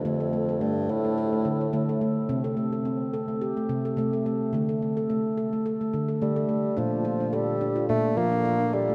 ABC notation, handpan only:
X:1
M:4/4
L:1/16
Q:"Swing 16ths" 1/4=107
K:Dm
V:1 name="Handpan"
A, A A, A A,2 A A, A A,2 A A, A A,2 | C A A, A C2 A A, G A,2 A A, A A,2 | A, A A, A A,2 A A, A A,2 A A, A A,2 | D2 F D A2 D F D2 F D F D A A, |]
V:2 name="Handpan" clef=bass
D,8 z2 D,2 D,4 | C,8 z2 C,2 C,4 | D,8 z2 D,2 D,4 | B,,8 B,,2 F,2 z4 |]